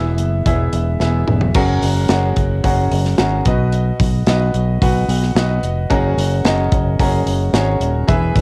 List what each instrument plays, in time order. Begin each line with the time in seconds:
Already playing: fingered electric bass E1, grand piano E3 B3 E4 G#4 E5
0.18 fingered electric bass F#1, closed hi-hat
0.46 fingered electric bass E1, grand piano B3 E4 G#4 E5, kick, closed hi-hat
0.73 fingered electric bass E1, closed hi-hat
1.00 fingered electric bass E1, grand piano B3 E4 G#4 E5, snare
1.28 fingered electric bass E1, mid tom
1.41 floor tom
1.54 fingered electric bass F#1, grand piano C#4 F#4 G#4 A#4 F#5, kick, crash
1.82 fingered electric bass F#1, hi-hat pedal, open hi-hat
2.09 fingered electric bass F#1, grand piano C#4 F#4 G#4 A#4 F#5, snare, hi-hat pedal, open hi-hat
2.36 fingered electric bass F#1, kick, hi-hat pedal, open hi-hat
2.64 fingered electric bass F#1, grand piano C#4 F#4 G#4 A#4 F#5, kick, hi-hat pedal, open hi-hat
2.91 fingered electric bass F#1, hi-hat pedal, open hi-hat
3.05 snare
3.18 fingered electric bass G#1, grand piano C#4 F#4 G#4 A#4 F#5, snare, hi-hat pedal, open hi-hat
3.45 fingered electric bass B1, grand piano B2 F#4 B4 D#5, kick, hi-hat pedal, open hi-hat
3.72 hi-hat pedal, open hi-hat
4.00 fingered electric bass B1, kick, hi-hat pedal, open hi-hat
4.27 fingered electric bass B1, grand piano F#4 B4 D#5, snare, hi-hat pedal, open hi-hat
4.54 fingered electric bass B1, hi-hat pedal, open hi-hat
4.81 fingered electric bass B1, grand piano F#4 B4 F#5, kick, hi-hat pedal, open hi-hat
5.08 fingered electric bass B1, hi-hat pedal, open hi-hat
5.23 snare
5.35 fingered electric bass B1, grand piano F#4 B4 D#5, snare, hi-hat pedal, open hi-hat
5.63 fingered electric bass F1, hi-hat pedal, open hi-hat
5.90 fingered electric bass F#1, grand piano C#4 F#4 G#4 A#4 F#5, kick, hi-hat pedal, open hi-hat
6.17 fingered electric bass F#1, hi-hat pedal, open hi-hat
6.44 fingered electric bass F#1, grand piano C#4 F#4 G#4 A#4 D#5, snare, hi-hat pedal, open hi-hat
6.72 fingered electric bass F#1, kick, hi-hat pedal, open hi-hat
6.99 fingered electric bass F#1, grand piano C#4 F#4 G#4 A#4 F#5, kick, hi-hat pedal, open hi-hat
7.26 fingered electric bass F#1, hi-hat pedal, open hi-hat
7.53 fingered electric bass G#1, grand piano C#4 F#4 G#4 A#4 C#5, snare, hi-hat pedal, open hi-hat
7.80 fingered electric bass D#1, hi-hat pedal, open hi-hat
8.07 fingered electric bass E1, grand piano E3 G#4 B4 E5, kick, hi-hat pedal, open hi-hat
8.35 fingered electric bass E1, kick, hi-hat pedal, open hi-hat